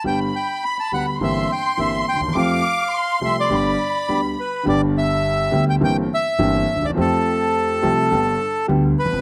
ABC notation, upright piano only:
X:1
M:4/4
L:1/16
Q:1/4=104
K:G
V:1 name="Upright piano" clef=bass
[G,,,G,,D,G,B,G]2 z4 [D,,D,G,B,G]2 [G,,,G,,E,_B,CG]2 z2 [G,,,G,,E,B,CG]2 z/2 D,,/2 _E,,/2 =E,,/2 | [=F,,=F,A,CG]2 z4 [C,,C,F,A,CG]2 [G,,,G,,D,G,B,G]2 z2 [D,,D,G,B,G]2 z2 | [G,,,G,,D,G,B,G]6 [D,,D,G,B,G]2 [G,,,G,,E,_B,CG]2 z2 [G,,,G,,E,B,CG]2 z/2 D,,/2 _E,,/2 =E,,/2 | [=F,,=F,A,CG]6 [C,,C,F,A,CG]2 [G,,,G,,D,G,B,G]2 z2 [D,,D,G,B,G]2 z/2 E,,/2 F,,/2 z/2 |]